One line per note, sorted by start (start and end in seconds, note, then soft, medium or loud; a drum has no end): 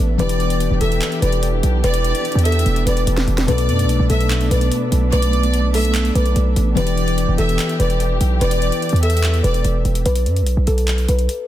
0.00 0.19 A1 loud
0.00 0.14 B2 medium
0.00 0.16 A3 medium
0.00 0.15 B3 medium
0.00 0.16 B3 medium
0.00 0.16 D4 medium
0.00 0.16 A4 medium
0.00 0.16 B4 medium
0.00 downlifter medium
0.18 0.69 E1 loud
0.18 3.43 E3 medium
0.18 3.45 E3 medium
0.18 3.44 B3 medium
0.18 10.02 B3 medium
0.18 10.02 D4 medium
0.18 3.45 D4 medium
0.18 3.45 G4 medium
0.18 0.78 B4 loud
0.18 0.77 D5 loud
0.18 closed hi-hat medium
0.29 closed hi-hat medium
0.40 closed hi-hat medium
0.50 closed hi-hat medium
0.60 closed hi-hat medium
0.71 0.81 E1 loud
0.81 1.01 E1 loud
0.81 1.20 A4 medium
0.81 1.20 E5 medium
0.81 closed hi-hat medium
0.92 closed hi-hat medium
1.01 clap loud
1.01 closed hi-hat medium
1.12 closed hi-hat medium
1.22 1.62 E1 loud
1.22 1.80 B4 medium
1.22 1.42 D5 medium
1.22 closed hi-hat medium
1.32 closed hi-hat soft
1.43 closed hi-hat medium
1.63 1.83 B1 loud
1.63 closed hi-hat medium
1.84 2.13 E1 loud
1.84 2.42 B4 loud
1.84 2.42 D5 loud
1.84 closed hi-hat medium
1.94 closed hi-hat medium
2.04 closed hi-hat medium
2.15 closed hi-hat medium
2.25 closed hi-hat soft
2.32 2.65 E2 loud
2.32 closed hi-hat soft
2.39 closed hi-hat medium
2.45 2.84 A4 medium
2.45 2.84 E5 medium
2.45 closed hi-hat medium
2.45 open hi-hat medium
2.52 closed hi-hat medium
2.59 closed hi-hat medium
2.66 2.86 E1 loud
2.66 closed hi-hat medium
2.76 closed hi-hat medium
2.86 3.06 E1 loud
2.86 3.44 B4 medium
2.86 3.06 D5 medium
2.86 closed hi-hat medium
2.97 closed hi-hat soft
3.07 3.27 E1 loud
3.07 closed hi-hat medium
3.17 snare medium
3.28 3.47 E1 loud
3.28 closed hi-hat soft
3.38 snare loud
3.38 closed hi-hat medium
3.46 3.70 B1 loud
3.46 6.72 B2 medium
3.46 6.74 A3 medium
3.46 6.73 B3 medium
3.46 6.73 D4 medium
3.46 6.74 A4 medium
3.46 4.06 B4 loud
3.46 4.06 D5 loud
3.46 closed hi-hat medium
3.58 closed hi-hat medium
3.69 3.86 F#2 medium
3.69 closed hi-hat medium
3.79 closed hi-hat medium
3.84 3.99 B1 loud
3.89 closed hi-hat medium
4.00 4.09 B1 loud
4.10 4.49 B1 loud
4.10 4.48 A4 medium
4.10 4.49 E5 medium
4.10 closed hi-hat medium
4.21 closed hi-hat medium
4.30 clap loud
4.30 closed hi-hat medium
4.41 closed hi-hat medium
4.51 4.71 B1 loud
4.51 5.09 B4 medium
4.51 4.71 D5 medium
4.51 closed hi-hat medium
4.61 closed hi-hat soft
4.72 closed hi-hat medium
4.92 5.12 B1 loud
4.92 closed hi-hat medium
5.13 6.11 B1 loud
5.13 5.71 B4 loud
5.13 5.71 D5 loud
5.13 closed hi-hat medium
5.22 closed hi-hat medium
5.33 closed hi-hat medium
5.43 closed hi-hat medium
5.54 closed hi-hat medium
5.74 6.13 A4 medium
5.74 6.13 E5 medium
5.74 open hi-hat medium
5.85 closed hi-hat medium
5.95 clap loud
5.95 closed hi-hat medium
6.05 closed hi-hat medium
6.15 6.35 B1 loud
6.15 6.73 B4 medium
6.15 6.35 D5 medium
6.15 closed hi-hat medium
6.26 closed hi-hat soft
6.36 6.56 B1 loud
6.36 closed hi-hat medium
6.56 6.76 A1 loud
6.56 closed hi-hat medium
6.75 7.26 E1 loud
6.75 10.01 E3 medium
6.75 10.02 E3 medium
6.75 10.02 B3 medium
6.75 10.02 D4 medium
6.75 10.02 G4 medium
6.75 10.03 G4 medium
6.75 7.35 B4 loud
6.75 7.35 D5 loud
6.75 closed hi-hat medium
6.87 closed hi-hat medium
6.98 closed hi-hat medium
7.08 closed hi-hat medium
7.18 closed hi-hat medium
7.28 7.38 E1 loud
7.38 7.58 E1 loud
7.38 7.77 A4 medium
7.38 7.77 E5 medium
7.38 closed hi-hat medium
7.49 closed hi-hat medium
7.59 clap loud
7.59 closed hi-hat medium
7.69 closed hi-hat medium
7.80 8.19 E1 loud
7.80 8.38 B4 medium
7.80 7.99 D5 medium
7.80 closed hi-hat medium
7.90 closed hi-hat soft
8.00 closed hi-hat medium
8.21 8.40 B1 loud
8.21 closed hi-hat medium
8.41 8.71 E1 loud
8.41 8.99 B4 loud
8.41 8.99 D5 loud
8.41 closed hi-hat medium
8.51 closed hi-hat medium
8.62 closed hi-hat medium
8.72 closed hi-hat medium
8.82 closed hi-hat soft
8.89 9.42 E2 loud
8.89 closed hi-hat medium
8.96 closed hi-hat medium
9.03 9.42 A4 medium
9.03 9.42 E5 medium
9.03 closed hi-hat medium
9.03 open hi-hat medium
9.10 closed hi-hat medium
9.17 closed hi-hat medium
9.23 clap loud
9.23 closed hi-hat medium
9.34 closed hi-hat medium
9.44 9.64 E1 loud
9.44 10.02 B4 medium
9.44 9.64 D5 medium
9.44 closed hi-hat medium
9.54 closed hi-hat soft
9.65 9.84 E1 loud
9.65 closed hi-hat medium
9.85 10.05 E1 loud
9.85 closed hi-hat soft
9.95 closed hi-hat medium
10.06 10.28 B1 loud
10.06 10.64 B4 loud
10.06 closed hi-hat medium
10.15 closed hi-hat medium
10.26 10.43 F#2 loud
10.26 closed hi-hat medium
10.37 closed hi-hat medium
10.42 10.56 B1 loud
10.47 closed hi-hat medium
10.57 10.67 B1 loud
10.67 11.07 B1 loud
10.67 11.06 A4 medium
10.67 closed hi-hat medium
10.78 closed hi-hat medium
10.88 clap loud
10.88 closed hi-hat medium
10.98 closed hi-hat medium
11.08 11.28 B1 loud
11.08 11.47 B4 medium
11.08 closed hi-hat medium
11.19 closed hi-hat soft
11.29 closed hi-hat medium